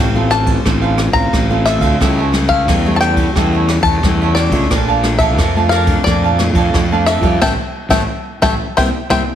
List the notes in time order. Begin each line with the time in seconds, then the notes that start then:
Already playing: A1 A2 D4 G5
0.00 A4 C5 F5
0.15 A3 C4 F4 A4 C5 F5
0.30 D4 A4 C5 F5 A5, cross-stick, ride
0.46 kick, ride
0.64 A1 D3 A3 C4 D4 F4 A4 C5 F5, kick, cross-stick, ride
0.82 A4 C5 F5
0.98 muted cavaquinho stroke, cross-stick, ride
1.12 A1 A3 C4 F4 C5 F5 A#5, kick, ride
1.33 A1 A2, kick, cross-stick, ride
1.50 A3 C4 F4 A4 C5 F5
1.66 D4 A4 C5 E5 F5, cross-stick, ride
1.79 D2 A4 C5 F5, kick, ride
2.00 C#2 C#3 G3 A3 E4 G4 A4 C#5 E5, kick, cross-stick, ride
2.18 A4 C#5 E5
2.32 G3 A3 E4, muted cavaquinho stroke, cross-stick, ride
2.48 A4 C#5 E5 F5, kick, ride
2.68 E2 C#3 G3 A3 E4 G4 A4 C#5 E5, kick, cross-stick, ride
2.85 G3 A3 E4 A4 C#5 E5
2.96 A5
3.00 G4 A4 C#5 E5 G5, cross-stick, ride
3.17 kick, ride
3.35 E2 C#3 G3 A3 E4 G4 A4 C#5 E5, kick, cross-stick, ride
3.53 A4 C#5 E5
3.68 muted cavaquinho stroke, cross-stick, ride
3.82 E2 C#5 E5 A5, kick, ride
3.87 A4
4.03 E2 C#3 G3 A3 E4, kick, cross-stick, ride
4.22 A4 C#5 E5
4.35 G4 A4 C#5 D5, cross-stick, ride
4.39 E5
4.49 C#2 A3 D4 F4 E5, kick, ride
4.54 A4 C#5
4.71 A#1 A#2 A#4 D5 F5 A5, kick, cross-stick, ride
4.88 D5 F5 A5
5.03 A3 D4 F4, muted cavaquinho stroke, cross-stick, ride
5.19 D5 E5 F5 A5, kick, ride
5.38 F2 F3 A#4 D5 F5, kick, cross-stick, ride
5.43 A5
5.56 A3 D4 F4 D5 F5 A5
5.69 A#4 D5 F5, cross-stick, ride
5.74 F5 A5
5.87 A3 D4 F4, kick, ride
6.04 F2 A#2 A3 D4 F4 A#4 D5, kick, cross-stick, ride
6.08 D5 F5 A5
6.24 D5 F5 A5
6.39 A3 D4 F4, muted cavaquinho stroke, cross-stick, ride
6.53 F2 A5, kick, ride
6.57 D5 F5
6.74 F2 F3, kick, cross-stick, ride
6.92 A3 D4 F4 D5 F5 A5
7.06 A#4 D5 E5 F5 A5, cross-stick, ride
7.21 F2 G3 C#4 E4 F5 A5, kick, ride
7.25 D5
7.41 A1 G3 A3 C#4 A4 C#5 E5 G5 A5, kick, snare
7.89 A1 G3 A3 C#4 A4 C#5 E5 G5 A5, kick, snare
8.42 A1 G3 A3 C#4 A4 C#5 E5 G5 A5, kick, snare
8.77 C2 G3 A#3 C4 A#4 C5 E5 G5, kick, snare
9.10 C2 G3 A#3 C4 A#4 C5 E5 G5, kick, snare